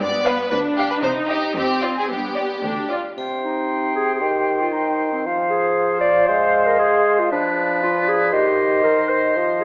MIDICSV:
0, 0, Header, 1, 10, 480
1, 0, Start_track
1, 0, Key_signature, -3, "minor"
1, 0, Tempo, 525855
1, 11, Time_signature, 2, 2, 24, 8
1, 4331, Tempo, 513259
1, 8911, End_track
2, 0, Start_track
2, 0, Title_t, "Flute"
2, 0, Program_c, 0, 73
2, 2910, Note_on_c, 0, 79, 46
2, 4782, Note_off_c, 0, 79, 0
2, 4808, Note_on_c, 0, 77, 59
2, 6724, Note_on_c, 0, 74, 59
2, 6738, Note_off_c, 0, 77, 0
2, 7667, Note_off_c, 0, 74, 0
2, 7672, Note_on_c, 0, 75, 59
2, 8911, Note_off_c, 0, 75, 0
2, 8911, End_track
3, 0, Start_track
3, 0, Title_t, "Violin section"
3, 0, Program_c, 1, 48
3, 228, Note_on_c, 1, 77, 54
3, 408, Note_off_c, 1, 77, 0
3, 710, Note_on_c, 1, 77, 50
3, 887, Note_off_c, 1, 77, 0
3, 1174, Note_on_c, 1, 75, 53
3, 1360, Note_off_c, 1, 75, 0
3, 1665, Note_on_c, 1, 74, 47
3, 1850, Note_off_c, 1, 74, 0
3, 2158, Note_on_c, 1, 74, 48
3, 2343, Note_off_c, 1, 74, 0
3, 2648, Note_on_c, 1, 74, 44
3, 2833, Note_off_c, 1, 74, 0
3, 8911, End_track
4, 0, Start_track
4, 0, Title_t, "Oboe"
4, 0, Program_c, 2, 68
4, 2903, Note_on_c, 2, 72, 49
4, 4779, Note_off_c, 2, 72, 0
4, 4814, Note_on_c, 2, 72, 52
4, 6698, Note_off_c, 2, 72, 0
4, 6736, Note_on_c, 2, 71, 57
4, 7680, Note_on_c, 2, 72, 61
4, 7694, Note_off_c, 2, 71, 0
4, 8911, Note_off_c, 2, 72, 0
4, 8911, End_track
5, 0, Start_track
5, 0, Title_t, "Clarinet"
5, 0, Program_c, 3, 71
5, 3126, Note_on_c, 3, 63, 60
5, 3576, Note_off_c, 3, 63, 0
5, 3609, Note_on_c, 3, 68, 68
5, 3778, Note_off_c, 3, 68, 0
5, 3783, Note_on_c, 3, 68, 39
5, 3831, Note_on_c, 3, 67, 59
5, 3844, Note_off_c, 3, 68, 0
5, 4199, Note_off_c, 3, 67, 0
5, 4209, Note_on_c, 3, 65, 61
5, 4311, Note_on_c, 3, 63, 68
5, 4324, Note_off_c, 3, 65, 0
5, 4680, Note_off_c, 3, 63, 0
5, 4685, Note_on_c, 3, 60, 51
5, 4808, Note_off_c, 3, 60, 0
5, 5037, Note_on_c, 3, 68, 67
5, 5495, Note_off_c, 3, 68, 0
5, 5511, Note_on_c, 3, 74, 84
5, 5753, Note_on_c, 3, 72, 71
5, 5767, Note_off_c, 3, 74, 0
5, 6126, Note_on_c, 3, 70, 69
5, 6140, Note_off_c, 3, 72, 0
5, 6236, Note_off_c, 3, 70, 0
5, 6241, Note_on_c, 3, 68, 82
5, 6621, Note_on_c, 3, 65, 61
5, 6635, Note_off_c, 3, 68, 0
5, 6728, Note_off_c, 3, 65, 0
5, 6734, Note_on_c, 3, 62, 73
5, 7199, Note_off_c, 3, 62, 0
5, 7217, Note_on_c, 3, 65, 81
5, 7451, Note_on_c, 3, 68, 77
5, 7465, Note_off_c, 3, 65, 0
5, 7678, Note_on_c, 3, 67, 69
5, 7692, Note_off_c, 3, 68, 0
5, 8152, Note_off_c, 3, 67, 0
5, 8158, Note_on_c, 3, 70, 81
5, 8392, Note_on_c, 3, 72, 65
5, 8406, Note_off_c, 3, 70, 0
5, 8639, Note_off_c, 3, 72, 0
5, 8874, Note_on_c, 3, 68, 63
5, 8911, Note_off_c, 3, 68, 0
5, 8911, End_track
6, 0, Start_track
6, 0, Title_t, "Violin section"
6, 0, Program_c, 4, 48
6, 0, Note_on_c, 4, 74, 69
6, 231, Note_off_c, 4, 74, 0
6, 233, Note_on_c, 4, 71, 74
6, 446, Note_off_c, 4, 71, 0
6, 456, Note_on_c, 4, 71, 73
6, 530, Note_off_c, 4, 71, 0
6, 693, Note_on_c, 4, 67, 73
6, 818, Note_off_c, 4, 67, 0
6, 826, Note_on_c, 4, 71, 65
6, 874, Note_off_c, 4, 71, 0
6, 940, Note_on_c, 4, 72, 70
6, 1013, Note_off_c, 4, 72, 0
6, 1172, Note_on_c, 4, 67, 63
6, 1416, Note_off_c, 4, 67, 0
6, 1425, Note_on_c, 4, 67, 68
6, 1659, Note_on_c, 4, 65, 57
6, 1665, Note_off_c, 4, 67, 0
6, 1788, Note_off_c, 4, 65, 0
6, 1805, Note_on_c, 4, 68, 58
6, 1918, Note_on_c, 4, 67, 54
6, 1920, Note_off_c, 4, 68, 0
6, 2641, Note_off_c, 4, 67, 0
6, 8911, End_track
7, 0, Start_track
7, 0, Title_t, "Viola section"
7, 0, Program_c, 5, 48
7, 4, Note_on_c, 5, 59, 67
7, 472, Note_off_c, 5, 59, 0
7, 476, Note_on_c, 5, 62, 63
7, 938, Note_on_c, 5, 63, 67
7, 939, Note_off_c, 5, 62, 0
7, 1423, Note_off_c, 5, 63, 0
7, 1427, Note_on_c, 5, 60, 57
7, 1914, Note_on_c, 5, 59, 47
7, 1916, Note_off_c, 5, 60, 0
7, 2358, Note_off_c, 5, 59, 0
7, 2401, Note_on_c, 5, 62, 46
7, 2634, Note_off_c, 5, 62, 0
7, 2649, Note_on_c, 5, 65, 50
7, 2722, Note_off_c, 5, 65, 0
7, 8911, End_track
8, 0, Start_track
8, 0, Title_t, "Bassoon"
8, 0, Program_c, 6, 70
8, 2897, Note_on_c, 6, 48, 48
8, 3846, Note_on_c, 6, 51, 49
8, 3859, Note_off_c, 6, 48, 0
8, 4814, Note_on_c, 6, 53, 57
8, 4828, Note_off_c, 6, 51, 0
8, 5775, Note_on_c, 6, 56, 60
8, 5789, Note_off_c, 6, 53, 0
8, 6733, Note_off_c, 6, 56, 0
8, 6739, Note_on_c, 6, 53, 62
8, 7682, Note_on_c, 6, 51, 60
8, 7696, Note_off_c, 6, 53, 0
8, 8650, Note_on_c, 6, 53, 52
8, 8664, Note_off_c, 6, 51, 0
8, 8911, Note_off_c, 6, 53, 0
8, 8911, End_track
9, 0, Start_track
9, 0, Title_t, "Cello section"
9, 0, Program_c, 7, 48
9, 3, Note_on_c, 7, 43, 64
9, 374, Note_off_c, 7, 43, 0
9, 469, Note_on_c, 7, 38, 66
9, 846, Note_off_c, 7, 38, 0
9, 941, Note_on_c, 7, 48, 65
9, 1323, Note_off_c, 7, 48, 0
9, 1426, Note_on_c, 7, 41, 66
9, 1813, Note_off_c, 7, 41, 0
9, 1921, Note_on_c, 7, 43, 57
9, 2307, Note_off_c, 7, 43, 0
9, 2412, Note_on_c, 7, 38, 57
9, 2799, Note_off_c, 7, 38, 0
9, 8911, End_track
10, 0, Start_track
10, 0, Title_t, "Drums"
10, 2902, Note_on_c, 9, 81, 35
10, 2993, Note_off_c, 9, 81, 0
10, 8911, End_track
0, 0, End_of_file